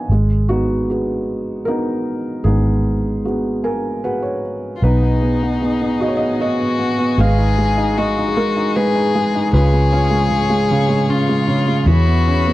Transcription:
Already playing: B3 D#4 A#4 C#5 D#5 F#5 G#5
0.09 G#1 G#3
0.49 B3 D#4 F#4
0.90 F#4 G#4 B4
1.65 B3 D#4 F#4 G#4 A#4
2.44 G#1 G#3 B3 D#4 G#4
3.25 B3 F#4 G#4
3.64 A#4 G#5
4.04 F#4 G#4 B4 F#5
4.22 C#5
4.76 F4
4.82 B1 B3 D#4 F#4 G#4 B4 D#5 G#5
5.02 B3
5.22 B3
5.43 B3
5.62 B3
5.81 B3
6.00 F#4 D#5
6.08 C#5
6.17 B3 D#5
6.39 B3 F#4 D#5
6.60 B3
6.79 B3
6.99 B3
7.18 G#1 G#3 G#4 B4 F5
7.38 D#4
7.58 G#3
7.78 D#4
7.98 G#3 F#4 D#5
8.18 D#4
8.28 G#4
8.37 G#3 A#4
8.57 D#4
8.76 G#3 G#4 B4
8.96 D#4
9.15 G#3
9.35 D#4
9.53 C#2 C#3 F4 G#4 B4 C#5 F5 C#6
9.73 G#3
9.92 C#4 F4 C#5
10.10 G#3
10.30 C#3
10.50 G#3
10.70 C#3
10.89 G#3
11.09 C#4 F4
11.29 G#3
11.48 C#3
11.68 G#3
11.86 E2 E3 F#4 E5 B5
12.07 B3
12.27 C#4
12.47 B3

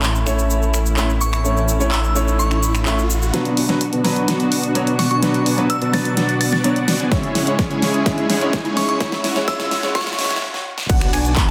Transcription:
Already playing: A1 A3 C#4 E4, riser
0.03 clap, cabasa
0.15 cabasa
0.26 A3 C#4 E4 C#5, finger snap, cabasa
0.39 cabasa
0.50 cabasa
0.62 cabasa
0.74 finger snap, cabasa
0.86 cabasa
0.97 A3 C#4 E4 E5, clap, cabasa
1.10 cabasa
1.21 C#6, cabasa
1.33 C#6, finger snap, cabasa
1.44 A3 C#4 E4 C#5, cabasa
1.57 cabasa
1.69 cabasa
1.80 A3 C#4 E4 C#5, cabasa
1.92 E6, clap, cabasa
2.04 cabasa
2.15 A3 C#4 E4 C#5, cabasa
2.28 cabasa
2.39 C#6, cabasa
2.51 finger snap, cabasa
2.63 cabasa
2.75 finger snap, cabasa
2.86 A3 C#4 E4 E5, clap, cabasa
2.99 cabasa
3.10 cabasa
3.22 cabasa
3.33 B2 F#3 B3 D4 F#4 B4 D5 F#5, snare, closed hi-hat, riser
3.45 closed hi-hat
3.57 B3 D4 F#4 D5 G#5, open hi-hat
3.69 F#3 B3 D4 B4, snare, closed hi-hat
3.81 closed hi-hat
3.93 B3 D4 F#4 D5 A5, closed hi-hat
4.04 F#3 B3 D4 B4, snare, open hi-hat
4.16 closed hi-hat
4.28 B3 D4 F#4 D5 F#5, snare, closed hi-hat
4.40 closed hi-hat
4.52 open hi-hat
4.63 closed hi-hat
4.75 F#3 B3 D4 F#4 C#5 D5 F#5, closed hi-hat
4.87 closed hi-hat
4.99 C#6, snare, open hi-hat
5.11 B3 D4 F#4 D5 G#5 C#6, closed hi-hat
5.22 F#3 B3 D4 F#4 B4 D5 F#5, snare, closed hi-hat
5.34 closed hi-hat
5.46 B3 D4 F#4 D5 G#5, open hi-hat
5.57 F#3 B3 D4 B4, closed hi-hat
5.70 E6, closed hi-hat
5.82 B3 D4 F#4 D5 A5, closed hi-hat
5.93 F#3 B3 D4 B4 A6, snare, open hi-hat
6.05 closed hi-hat
6.17 B3 D4 F#4 D5 F#5, snare, closed hi-hat
6.29 closed hi-hat
6.41 A6, open hi-hat
6.52 A6, snare, closed hi-hat
6.64 F#3 B3 D4 F#4 C#5 D5 F#5, closed hi-hat
6.76 closed hi-hat
6.88 snare, open hi-hat
7.00 B3 D4 F#4 D5 G#5, closed hi-hat
7.11 C#3 G#3 C#4 E4 G#4 C#5 E5, kick, snare, closed hi-hat
7.24 closed hi-hat
7.35 G#3 C#4 E4 C#5 F#5, snare, open hi-hat
7.46 G#3 C#4 E4 C#5, closed hi-hat
7.59 kick, snare, closed hi-hat
7.71 G#3 C#4 E4 C#5 G#5, closed hi-hat
7.82 G#3 C#4 E4 C#5, snare, open hi-hat
7.94 closed hi-hat
8.06 G#3 C#4 E4 C#5 E5, kick, snare, closed hi-hat
8.18 closed hi-hat
8.30 G#3 C#4 E4 C#5 F#5, snare, open hi-hat
8.41 G#3 C#4 E4 C#5, closed hi-hat
8.53 kick, snare, closed hi-hat
8.65 G#3 C#4 E4 C#5 G#5, closed hi-hat
8.76 G#3 C#4 E4 C#5 C#6, snare, open hi-hat
8.89 C#6, closed hi-hat
9.00 G#3 C#4 E4 F#4 C#5 E5, kick, snare, closed hi-hat
9.12 snare, closed hi-hat
9.24 G#3 C#4 E4 C#5 F#5, snare, open hi-hat
9.35 G#3 C#4 E4 C#5, snare, closed hi-hat
9.47 G#3 C#4 E4 C#5 E5 E6, kick, snare, closed hi-hat
9.60 snare, closed hi-hat
9.71 G#3 C#4 E4 C#5 F#5, snare, open hi-hat
9.83 G#3 C#4 E4 C#5, snare, closed hi-hat
9.95 G#3 C#4 E4 C#5 E5 C#6, kick, snare, closed hi-hat
10.01 snare
10.07 snare, closed hi-hat
10.13 snare
10.18 G#3 C#4 E4 C#5 E5, snare, open hi-hat
10.25 snare
10.31 snare, closed hi-hat
10.36 snare
10.42 snare
10.54 snare
10.78 snare
10.89 B1 B3 D4 F#4 D5 F#5, kick, closed hi-hat, crash, ride, cabasa
11.01 finger snap, closed hi-hat, cabasa
11.13 B1 B3 D4 F#4 D5 G#5, finger snap, open hi-hat, ride, cabasa
11.25 closed hi-hat, cabasa
11.37 kick, clap, closed hi-hat, ride, cabasa

